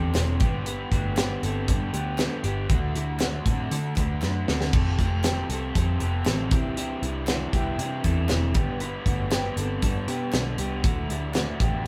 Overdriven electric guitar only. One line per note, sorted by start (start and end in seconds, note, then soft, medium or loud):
0.00 0.14 C4 soft
0.00 0.14 D4 medium
0.00 0.14 G4 medium
0.14 0.40 C3 medium
0.14 0.40 E3 medium
0.14 0.40 C4 medium
0.14 0.39 D4 medium
0.14 0.38 G4 medium
0.39 0.65 B3 medium
0.39 0.66 D4 medium
0.39 0.65 G4 medium
0.66 0.91 G3 medium
0.66 0.92 B3 medium
0.66 0.91 D4 medium
0.66 0.90 G4 medium
0.91 1.17 B3 soft
0.91 1.17 D4 medium
0.91 1.17 G4 medium
1.17 1.42 G3 medium
1.17 1.43 B3 medium
1.17 1.43 D4 medium
1.17 1.41 G4 medium
1.42 1.67 B3 soft
1.42 1.68 D4 medium
1.42 1.68 G4 medium
1.68 1.93 G3 medium
1.68 1.94 B3 medium
1.68 1.93 D4 medium
1.68 1.92 G4 medium
1.93 2.18 B3 soft
1.93 2.19 D4 soft
1.93 2.19 G4 medium
2.19 2.44 G3 medium
2.19 2.45 B3 medium
2.19 2.44 D4 medium
2.19 2.43 G4 medium
2.44 2.70 B3 medium
2.44 2.70 D4 medium
2.44 2.70 G4 medium
2.70 2.95 D3 medium
2.70 2.95 A3 medium
2.70 2.95 D4 medium
2.70 2.94 F#4 medium
2.95 3.20 A3 medium
2.95 3.21 D4 medium
2.95 3.21 F#4 medium
3.21 3.46 D3 medium
3.21 3.46 A3 medium
3.21 3.46 D4 medium
3.21 3.45 F#4 loud
3.46 3.70 A3 soft
3.46 3.72 D4 soft
3.46 3.72 F#4 medium
3.71 3.96 D3 medium
3.71 3.97 A3 medium
3.71 3.97 D4 medium
3.71 3.95 F#4 medium
3.96 4.22 A3 soft
3.96 4.22 D4 medium
3.96 4.22 F#4 soft
4.22 4.48 D3 medium
4.22 4.48 A3 medium
4.22 4.47 D4 medium
4.22 4.46 F#4 medium
4.47 4.73 A3 medium
4.47 4.74 D4 soft
4.47 4.73 F#4 medium
4.73 4.99 F3 medium
4.73 4.99 G3 medium
4.73 4.99 C4 medium
4.73 4.99 G4 medium
4.73 4.98 A4 medium
4.99 5.24 C4 soft
4.99 5.24 G4 medium
4.99 5.24 A4 medium
5.24 5.49 F3 medium
5.24 5.50 G3 medium
5.24 5.50 C4 medium
5.24 5.49 G4 medium
5.24 5.48 A4 medium
5.49 5.75 C4 soft
5.49 5.76 G4 soft
5.49 5.75 A4 soft
5.75 6.01 G3 medium
5.75 6.01 C4 medium
5.75 6.00 G4 medium
5.75 5.99 A4 medium
6.00 6.25 C4 soft
6.00 6.25 G4 medium
6.00 6.26 A4 medium
6.25 6.51 F3 medium
6.25 6.51 G3 medium
6.25 6.52 C4 medium
6.25 6.50 G4 medium
6.25 6.52 A4 loud
6.50 6.76 G3 medium
6.50 6.76 D4 soft
6.50 6.76 E4 medium
6.76 7.02 C3 medium
6.76 7.02 E3 medium
6.76 7.02 G3 medium
6.76 7.01 D4 medium
6.76 7.00 E4 medium
7.01 7.27 G3 medium
7.01 7.27 D4 medium
7.01 7.27 E4 medium
7.27 7.53 C3 medium
7.27 7.53 E3 medium
7.27 7.53 G3 medium
7.27 7.53 D4 medium
7.27 7.51 E4 medium
7.52 7.77 G3 soft
7.52 7.78 D4 soft
7.52 7.78 E4 medium
7.78 8.04 E3 medium
7.78 8.04 G3 medium
7.78 8.03 D4 medium
7.78 8.02 E4 medium
8.03 8.28 G3 medium
8.03 8.29 D4 medium
8.03 8.29 E4 medium
8.29 8.54 C3 medium
8.29 8.55 E3 medium
8.29 8.55 G3 medium
8.29 8.53 D4 medium
8.29 8.54 E4 medium
8.54 8.79 G3 soft
8.54 8.80 B3 medium
8.54 8.80 D4 medium
8.80 9.06 G2 medium
8.80 9.06 D3 medium
8.80 9.06 G3 medium
8.80 9.05 B3 medium
8.80 9.04 D4 medium
9.05 9.31 G3 soft
9.05 9.31 B3 medium
9.05 9.31 D4 medium
9.31 9.56 G2 medium
9.31 9.57 D3 medium
9.31 9.57 G3 medium
9.31 9.56 B3 medium
9.31 9.55 D4 medium
9.56 9.81 G3 medium
9.56 9.82 B3 medium
9.56 9.82 D4 medium
9.81 10.07 D3 medium
9.81 10.08 G3 medium
9.81 10.07 B3 medium
9.81 10.05 D4 medium
10.07 10.32 G3 soft
10.07 10.33 B3 soft
10.07 10.33 D4 soft
10.33 10.58 G2 medium
10.33 10.59 D3 medium
10.33 10.59 G3 medium
10.33 10.58 B3 loud
10.33 10.57 D4 loud
10.58 10.83 G3 soft
10.58 10.84 B3 medium
10.58 10.83 D4 medium
10.83 11.09 D3 medium
10.83 11.09 F#3 medium
10.83 11.09 A3 medium
10.83 11.08 D4 medium
11.09 11.34 F#3 soft
11.09 11.34 A3 medium
11.09 11.35 D4 medium
11.34 11.60 D3 medium
11.34 11.60 F#3 medium
11.34 11.60 A3 medium
11.34 11.59 D4 medium
11.60 11.85 F#3 soft
11.60 11.86 A3 soft
11.60 11.85 D4 medium